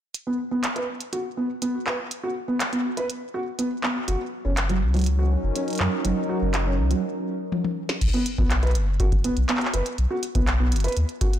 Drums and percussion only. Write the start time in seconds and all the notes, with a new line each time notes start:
0.14 closed hi-hat
0.64 clap, closed hi-hat
0.76 closed hi-hat
1.01 closed hi-hat
1.13 closed hi-hat
1.62 closed hi-hat
1.87 clap
2.11 closed hi-hat
2.60 clap, closed hi-hat
2.73 closed hi-hat
2.97 closed hi-hat
3.10 closed hi-hat
3.59 closed hi-hat
3.83 clap
4.08 closed hi-hat
4.57 clap, closed hi-hat
4.70 closed hi-hat
4.94 closed hi-hat
4.97 closed hi-hat
4.99 closed hi-hat
5.01 closed hi-hat
5.04 closed hi-hat
5.06 closed hi-hat
5.56 closed hi-hat
5.68 closed hi-hat
5.70 closed hi-hat
5.73 closed hi-hat
5.75 closed hi-hat
5.78 clap, closed hi-hat
6.05 closed hi-hat
6.54 clap, closed hi-hat
6.91 closed hi-hat
7.52 high tom
7.64 high tom
7.89 snare
8.01 kick, closed hi-hat, crash
8.14 closed hi-hat
8.26 closed hi-hat
8.38 kick
8.51 clap, closed hi-hat
8.63 closed hi-hat
8.67 closed hi-hat
8.71 closed hi-hat
8.75 closed hi-hat
9.00 kick, closed hi-hat
9.12 kick, closed hi-hat
9.24 closed hi-hat
9.37 closed hi-hat
9.49 clap, closed hi-hat
9.57 clap
9.61 closed hi-hat
9.65 clap
9.74 closed hi-hat
9.86 closed hi-hat
9.98 closed hi-hat
10.23 closed hi-hat
10.35 kick, closed hi-hat
10.47 clap, closed hi-hat
10.72 closed hi-hat
10.76 closed hi-hat
10.80 closed hi-hat
10.84 closed hi-hat
10.88 closed hi-hat
10.92 closed hi-hat
10.97 closed hi-hat
11.09 closed hi-hat
11.21 kick, closed hi-hat
11.33 closed hi-hat